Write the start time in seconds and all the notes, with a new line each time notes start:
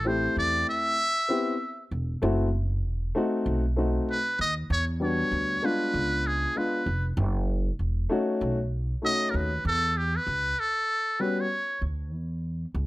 Already playing: A1
0.04 A3 C4 E4 G4 C5
0.37 E2 D5
0.69 E5
1.28 B3 C4 E4 G4
1.91 E1
2.22 F#1 A3 C4 E4 F#4
2.84 E1
3.15 A3 C4 D#4 F#4
3.46 B1
3.76 A3 C4 D#4 F#4
4.11 B4
4.39 D#2 D#5
4.70 E2 C#5
5.00 G3 B3 D4 F#4 C#5
5.32 D2
5.62 G#3 B3 D4 F4 B4
5.94 C#2
6.27 G#4
6.55 G#3 B3 D4 F4 B4
6.86 F1
7.17 F#1
7.79 E1
8.09 A3 C#4 D#4 F#4
8.41 B1
9.02 A3 C#4 D#4 F#4 D#5
9.30 D#2 A#4
9.36 B4
9.65 E2 A4
9.97 G4
10.16 B4
10.27 C#2
10.60 A4
11.19 G3 B3 C#4 F#4 B4
11.41 C#5
11.81 D2
12.12 E2
12.74 C#2